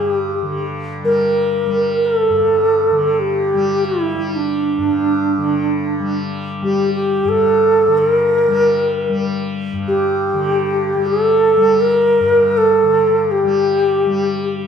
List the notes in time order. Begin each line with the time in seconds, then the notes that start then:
Already playing: G2 D3 G3 G#4
0.10 G4
0.42 D3
1.03 G3 A#4
1.66 G3
2.05 A#4
2.16 A4
2.29 G2
2.91 D3
3.14 A4
3.20 G4
3.54 G3
3.86 E4
4.15 G3
4.35 D4
4.78 G2
5.37 D3
6.00 G3
6.62 G3 G4
6.95 G4
7.24 G2
7.29 A4
7.87 D3
7.98 A4
8.10 A#4
8.48 G3
9.09 G3
9.73 G2
9.88 G4
10.33 D3
10.95 G3
11.06 A4
11.57 G3
11.80 A#4
12.20 G2
12.57 A4
12.82 D3
13.31 G4
13.44 G3
14.06 G3